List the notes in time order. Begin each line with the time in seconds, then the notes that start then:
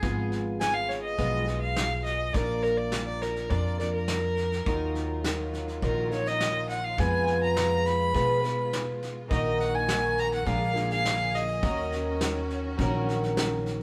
Already playing: G#4
0.01 G#1 G#2 F3 G#3 B3 F4 G#4, kick, snare
0.32 snare
0.60 G#3 B3 F4 G#4 G#5, snare
0.74 F5
0.89 C#5, snare
1.02 D#5
1.17 B1 G#2 F3 G#3 B3 F4 G#4, kick, snare
1.47 G#3 B3 F4 G#4, snare
1.61 F5
1.76 snare
2.04 D#5, snare
2.33 A#1 A#2 F3 A#3 D4 F4 D5, kick, snare
2.37 A#4
2.63 A#4, snare
2.77 D5
2.92 snare
3.07 D5
3.21 A#4, snare
3.36 snare
3.50 F2 A#2 F3 A#3 D4 F4 A#4 D5, kick, snare
3.79 A#3 D4 F4 A#4 D5, snare
3.94 A#4
4.08 snare
4.37 snare
4.52 snare
4.66 D#2 D#3 F#3 D#4 F4 A#4, kick, snare
4.95 snare
5.24 F#3 D#4 F4 A#4, snare
5.53 snare
5.68 snare
5.82 A#1 D#3 F#3 D#4 F4 A#4, kick, snare
6.10 D#4 F4 A#4 C#5, snare
6.26 D#5, snare
6.40 snare
6.69 F#5, snare
6.84 F5
6.97 F2 B2 F3 G#3 B3 F4 G#5, kick, snare
7.02 B4
7.27 snare
7.43 A#5
7.57 snare
7.86 B5, snare
8.14 B2 F3 G#3 B3 F4 B4, kick, snare
8.42 B3 F4 B4, snare
8.73 snare
9.03 snare
9.28 A#1 A#2 D#3 A#3 D#4 F#4 D#5, kick, snare
9.33 A#4
9.60 F#5, snare
9.75 G#5
9.89 snare
10.18 A#5, snare
10.32 F#5, snare
10.45 A#1 A#2 D3 F3 G#3 D4 F4 G#4 A#4 F5, kick, snare
10.74 G#3 D4 F4 A#4, snare
10.91 F5, snare
11.05 snare
11.35 D#5, snare
11.61 D#2 D#3 F#3 C#4 F#4, kick, snare
11.65 A#4
11.92 snare
12.21 snare
12.50 snare
12.77 A#1 D#3 F#3 C#4 F#4, kick, snare
12.82 A#4
13.09 snare
13.23 snare
13.37 snare
13.66 snare